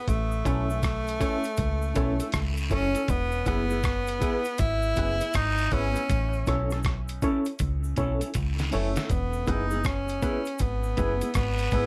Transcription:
0.08 fingered electric bass A1, tenor saxophone A3, kick, closed hi-hat, cabasa
0.32 cabasa
0.45 fingered electric bass B1, tenor saxophone A3, reed electric piano C#4 E4 A4 C#5, clean electric guitar C#4 E4 A4, kick, closed hi-hat, cabasa
0.70 clean electric guitar C#4 E4 A4, cabasa
0.83 kick, cross-stick, closed hi-hat, cabasa
1.07 closed hi-hat, cabasa
1.20 reed electric piano C#4 E4 A4 C#5, clean electric guitar C#4 E4 A4, kick, closed hi-hat, cabasa
1.44 closed hi-hat, cabasa
1.57 fingered electric bass C#2, kick, closed hi-hat, cabasa
1.82 cabasa
1.94 fingered electric bass B1, clean electric guitar C#4 E4 A4, reed electric piano C#4 E4 A4 C#5, kick, closed hi-hat, cabasa
2.20 clean electric guitar C#4 E4 A4, closed hi-hat, cabasa
2.32 fingered electric bass C#2, kick, cross-stick, closed hi-hat, cabasa, long guiro
2.57 closed hi-hat, cabasa
2.70 fingered electric bass F#1, clean electric guitar C#4 E4 A4, reed electric piano C#4 E4 A4 C#5, tenor saxophone C#4, kick, open hi-hat, cabasa
2.94 clean electric guitar C#4 E4 A4, reed electric piano A4 C#5, closed hi-hat, cabasa
3.08 fingered electric bass E1, tenor saxophone B3, kick, closed hi-hat, cabasa
3.32 cabasa
3.45 fingered electric bass F#1, clean electric guitar B3 E4 G#4, reed electric piano B3 E4 G#4 B4, tenor saxophone B3, kick, closed hi-hat, cabasa
3.69 clean electric guitar B3 E4 G#4, cabasa
3.83 kick, cross-stick, closed hi-hat, cabasa
4.07 closed hi-hat, cabasa
4.19 clean electric guitar B3 E4 G#4, reed electric piano B3 E4 G#4 B4, kick, closed hi-hat, cabasa
4.45 closed hi-hat, cabasa
4.58 fingered electric bass G#1, tenor saxophone E4, kick, closed hi-hat, cabasa
4.82 cabasa
4.96 fingered electric bass F#1, clean electric guitar B3 E4 G#4, reed electric piano B3 E4 G#4 B4, kick, closed hi-hat, cabasa
5.21 clean electric guitar B3 E4 G#4, closed hi-hat, cabasa
5.33 fingered electric bass G#1, tenor saxophone D#4, kick, cross-stick, closed hi-hat, cabasa, long guiro
5.58 closed hi-hat, cabasa
5.71 fingered electric bass G#1, clean electric guitar B3 E4 G#4, reed electric piano B3 E4 G#4 B4, tenor saxophone C#4, kick, open hi-hat, cabasa
5.95 clean electric guitar B3 E4 G#4, reed electric piano G#4 B4, closed hi-hat, cabasa
6.10 fingered electric bass A1, kick, closed hi-hat, cabasa
6.33 cabasa
6.46 fingered electric bass B1, clean electric guitar C#4 E4 A4, reed electric piano C#4 E4 A4 C#5, kick, cross-stick, closed hi-hat, cabasa
6.70 clean electric guitar C#4 E4 A4, cross-stick, cabasa
6.83 kick, cross-stick, closed hi-hat, cabasa
7.08 closed hi-hat, cabasa
7.22 clean electric guitar C#4 E4 A4, reed electric piano C#4 E4 A4 C#5, kick, closed hi-hat, cabasa
7.45 closed hi-hat, cabasa
7.59 fingered electric bass C#2, kick, closed hi-hat, cabasa
7.84 cabasa
7.96 fingered electric bass B1, clean electric guitar C#4 E4 A4, reed electric piano C#4 E4 A4 C#5, kick, closed hi-hat, cabasa
8.20 clean electric guitar C#4 E4 A4, closed hi-hat, cabasa
8.34 fingered electric bass C#2, kick, closed hi-hat, cabasa, long guiro
8.59 snare, closed hi-hat, cabasa
8.71 fingered electric bass F#1, tenor saxophone A3, clean electric guitar C#4 E4 A4, reed electric piano C#4 E4 A4 C#5, open hi-hat, cabasa
8.96 clean electric guitar C#4 E4 A4, snare, closed hi-hat, cabasa
9.10 fingered electric bass E1, tenor saxophone B3, kick, closed hi-hat, cabasa
9.33 cabasa
9.47 fingered electric bass F#1, clean electric guitar B3 E4 G#4, reed electric piano B3 E4 G#4 B4, tenor saxophone D#4, kick, closed hi-hat, cabasa
9.71 clean electric guitar B3 E4 G#4, cabasa
9.84 tenor saxophone C#4, kick, cross-stick, closed hi-hat, cabasa
10.08 closed hi-hat, cabasa
10.22 clean electric guitar B3 E4 G#4, reed electric piano B3 E4 G#4 B4, kick, closed hi-hat, cabasa
10.45 closed hi-hat, cabasa
10.58 fingered electric bass G#1, tenor saxophone B3, kick, closed hi-hat, cabasa
10.83 cabasa
10.97 fingered electric bass F#1, clean electric guitar B3 E4 G#4, reed electric piano B3 E4 G#4 B4, kick, closed hi-hat, cabasa
11.21 clean electric guitar B3 E4 G#4, closed hi-hat, cabasa
11.34 fingered electric bass G#1, tenor saxophone B3, kick, cross-stick, closed hi-hat, cabasa, long guiro
11.58 closed hi-hat, cabasa
11.71 fingered electric bass G#1, clean electric guitar B3 E4 G#4, reed electric piano B3 E4 G#4 B4, kick, open hi-hat, cabasa

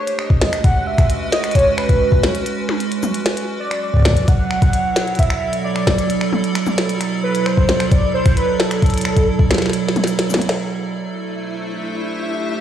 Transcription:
Already playing: ambient pad G#3 C#4, soft synth lead C#5
0.07 closed hi-hat
0.18 ambient pad B4, soft synth lead D#5, finger snap
0.24 ambient pad F#4
0.30 kick
0.41 snare, high tom
0.53 finger snap, closed hi-hat
0.64 soft synth lead F#5, kick, closed hi-hat
0.87 soft synth lead E5
0.98 finger snap, kick, closed hi-hat
1.10 closed hi-hat
1.32 soft synth lead D#5, snare, closed hi-hat
1.44 finger snap, closed hi-hat
1.51 soft synth lead C#5, kick, closed hi-hat
1.55 closed hi-hat
1.59 closed hi-hat
1.78 soft synth lead B4, finger snap
1.89 kick, closed hi-hat
2.12 kick
2.23 finger snap, snare, closed hi-hat, high tom
2.35 closed hi-hat
2.46 closed hi-hat
2.69 finger snap, high tom
2.80 closed hi-hat
2.92 closed hi-hat
3.03 high tom, shaker
3.14 closed hi-hat
3.26 snare, closed hi-hat
3.37 ambient pad F#3, closed hi-hat
3.60 soft synth lead D5
3.71 finger snap, closed hi-hat
3.82 ambient pad B2, soft synth lead D5
3.94 ambient pad E4, kick
3.97 kick
4.00 kick
4.02 finger snap, kick
4.05 kick, snare, high tom
4.08 kick
4.11 kick
4.14 kick, closed hi-hat
4.28 soft synth lead F#5, kick, closed hi-hat
4.51 ambient pad A4, finger snap
4.62 kick, closed hi-hat
4.70 ambient pad D5, closed hi-hat
4.96 finger snap, snare, closed hi-hat
5.08 closed hi-hat
5.15 kick, closed hi-hat
5.19 soft synth lead E5, closed hi-hat
5.23 closed hi-hat
5.30 finger snap
5.53 closed hi-hat
5.64 soft synth lead D5
5.76 finger snap
5.87 kick, snare, high tom
5.98 closed hi-hat
6.10 closed hi-hat
6.21 finger snap
6.33 high tom
6.44 closed hi-hat
6.55 finger snap, closed hi-hat
6.67 high tom, shaker
6.78 snare, closed hi-hat
6.89 closed hi-hat
7.01 finger snap, closed hi-hat
7.23 soft synth lead B4
7.35 closed hi-hat
7.46 soft synth lead C5, finger snap
7.57 kick
7.69 snare, high tom
7.80 finger snap, closed hi-hat
7.91 soft synth lead D5, kick, closed hi-hat
8.14 soft synth lead C5
8.26 finger snap, kick, closed hi-hat
8.37 soft synth lead B4, closed hi-hat
8.53 soft synth lead B4
8.60 soft synth lead A4, snare
8.71 finger snap, closed hi-hat
8.82 kick, closed hi-hat
8.86 closed hi-hat
8.90 closed hi-hat
8.94 closed hi-hat
8.98 closed hi-hat
9.01 finger snap, closed hi-hat
9.17 kick, closed hi-hat
9.39 kick
9.51 finger snap, snare, closed hi-hat, high tom
9.54 snare
9.58 snare
9.62 snare
9.66 snare
9.70 snare, closed hi-hat
9.89 snare
9.96 closed hi-hat, high tom
10.04 snare, closed hi-hat, shaker
10.19 snare, closed hi-hat
10.30 high tom, shaker
10.33 snare, high tom
10.36 high tom
10.39 closed hi-hat, high tom
10.49 snare
10.64 ambient pad A3, synth texture E4 E5
10.92 ambient pad C5
10.97 ambient pad D4
11.12 ambient pad E5
11.42 ambient pad G4

